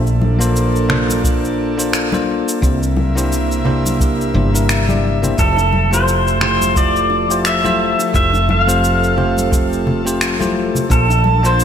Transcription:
Already playing: A#1 A#3 D4 A4
0.07 shaker
0.22 high conga
0.39 A#3 D4 F4 A4 C5, shaker
0.56 shaker
0.76 shaker
0.88 A#3 D4 F4 A4 C5, finger snap, low conga
1.09 high conga, shaker
1.23 A#3 D4 F4 A4 C5, kick, shaker
1.45 shaker
1.77 A#3 D4 F4 A4 C5, shaker
1.93 finger snap, shaker
2.12 A#3 D4 F4 A4 C5, high conga, shaker
2.48 shaker
2.61 C2 C3 A#3 D4 E4 G4 C5 E5, kick, shaker
2.83 shaker
2.97 high conga
3.15 A#3 D4 E4 G4 C5, shaker
3.32 shaker
3.52 shaker
3.65 A#3 D4 E4 G4 C5, low conga
3.85 high conga, shaker
3.99 A#3 D4 E4 G4 A#4, kick, shaker
4.21 shaker
4.34 G1 A#3 D4 E4 G4 C5, low conga
4.53 A#3 D4 E4 G4 A#4, shaker
4.69 finger snap, shaker
4.88 A#3 D4 E4 G4 D5, high conga, shaker
5.22 A#3 D4 E4 G4 C5, low conga, shaker
5.37 F1 F3 A3 E4 F4 G4 A4 C5, kick, shaker
5.57 high bongo, shaker
5.73 high conga
5.91 A3 E4 F4 G4 C5, shaker
6.08 shaker
6.28 shaker
6.40 A3 E4 F4 G4 C5, finger snap, high bongo, low conga
6.61 high conga, shaker
6.75 A3 E4 F4 G4 A4 D5, kick, shaker
6.96 shaker
7.10 high bongo
7.29 A3 E4 F4 G4 C5, shaker
7.45 E5, finger snap, shaker
7.63 A3 E4 F4 G4 C5, high conga, shaker
7.99 high bongo, shaker
8.13 F1 A3 E4 F4 G4 C5 E5, kick, shaker
8.34 high bongo, shaker
8.49 F5, high conga
8.67 A3 C4 F4 G4 C5, shaker
8.84 shaker
9.04 shaker
9.16 A3 C4 F4 G4 C5, high bongo, low conga
9.37 high conga, shaker
9.51 A3 C4 F4 G4 A4, kick, shaker
9.73 shaker
9.87 low conga
10.05 A3 C4 F4 G4 C5, shaker
10.21 finger snap, shaker
10.39 A3 E4 F4 G4 C5, high conga, shaker
10.75 high bongo, low conga, shaker
10.89 A#1 A#3 D4 F4 A4 C5 A5, kick, shaker
11.10 high bongo, shaker
11.24 high conga
11.43 A#3 D4 F4 A4 C5, shaker
11.60 shaker

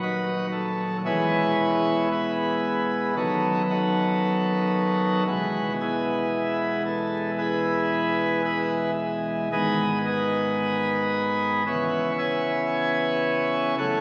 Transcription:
Already playing: D#1 D#2 F#3
0.02 D#4 F#4 B4
0.52 A4
1.05 E1 E2 E3 G#3 B3 E4 G#4 C#5
2.12 E4 G#4 B4
3.16 F#1 F#2 D#3 F#3 B3 D#4 F#4 A4
3.70 D#4 F#4 A4
5.27 E1 E2 E3 G#3 B3 F#4
5.81 B3 E4 G#4
6.86 A4
7.38 E4 G#4 B4
8.44 E4 G#4 B4
9.52 G#1 G#2 D#3 G#3 B3 G#4 B4 D#5
10.06 G#4 B4 D#5
11.67 C#3 E3 B3 C#4 B4 C#5 E5
12.18 C#5 E5 G#5
13.78 F#1 F#2 E3 A3 C#4 A4 C#5 F#5

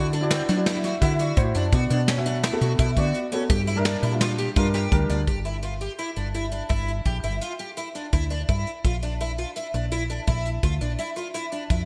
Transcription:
Already playing: D3 E4 F#4 D5
0.13 D4, closed hi-hat
0.21 E4 F#4 D5
0.31 C4, snare, closed hi-hat
0.49 F#3 D4, snare, closed hi-hat
0.57 E4 F#4 D5
0.66 E4, snare, closed hi-hat
0.84 F#4 E5, snare, closed hi-hat
1.01 D3 E4 F#4 E5 F#5, kick, closed hi-hat
1.19 F#4 D5, closed hi-hat
1.36 A2 E4 F#4 C5, kick, closed hi-hat
1.55 F#2 D4 D5, closed hi-hat
1.72 B2 B3 F#4 D5, kick, closed hi-hat
1.90 B2 D4, closed hi-hat
2.08 C#4, snare, closed hi-hat
2.16 B3 F#4 E5
2.26 D4, closed hi-hat
2.44 E4, snare, closed hi-hat
2.52 B3 F#4 A4
2.61 B2 F#4, closed hi-hat
2.79 B2 E4, kick, closed hi-hat
2.96 D3 B3 F#4 D5, kick, closed hi-hat
3.14 closed hi-hat
3.32 B3 C#4 F#4 A4, closed hi-hat
3.50 G2 G4, kick, closed hi-hat
3.67 E4, closed hi-hat
3.76 G3 D4 A#4
3.85 D4, snare, closed hi-hat
4.03 A#2 E4, closed hi-hat
4.12 G3 D4 F4
4.21 F4, snare, closed hi-hat
4.38 G4, closed hi-hat
4.56 G2 G3 D4 F4 A#4, kick, closed hi-hat
4.74 G4, snare, closed hi-hat
4.91 D2 G3 D4 A#4, kick, closed hi-hat
5.10 D2 D4, closed hi-hat
5.27 G1 G4, kick, closed hi-hat
5.45 E4, closed hi-hat
5.63 F4, closed hi-hat
5.81 G4, closed hi-hat
5.99 E4, closed hi-hat
6.16 G1 D4, closed hi-hat
6.34 E4, closed hi-hat
6.52 D4, closed hi-hat
6.69 G1 E4, kick, closed hi-hat
6.88 closed hi-hat
7.05 A#1 G4, kick, closed hi-hat
7.24 G1 E4, closed hi-hat
7.41 F4, closed hi-hat
7.59 G4, closed hi-hat
7.77 E4, closed hi-hat
7.95 D4, closed hi-hat
8.13 D2 E4, kick, closed hi-hat
8.30 D4, closed hi-hat
8.49 G2 E4, kick, closed hi-hat
8.67 closed hi-hat
8.85 A#1 F4, kick, closed hi-hat
9.03 D4, closed hi-hat
9.21 E4, closed hi-hat
9.38 F4, closed hi-hat
9.56 E4, closed hi-hat
9.74 A#1 D4, closed hi-hat
9.92 E4, closed hi-hat
10.10 D4, closed hi-hat
10.27 A#1 E4, kick, closed hi-hat
10.45 closed hi-hat
10.63 D2 F4, kick, closed hi-hat
10.81 A#1 D4, closed hi-hat
10.99 E4, closed hi-hat
11.16 F4, closed hi-hat
11.34 E4, closed hi-hat
11.52 D4, closed hi-hat
11.70 F2 E4, kick, closed hi-hat

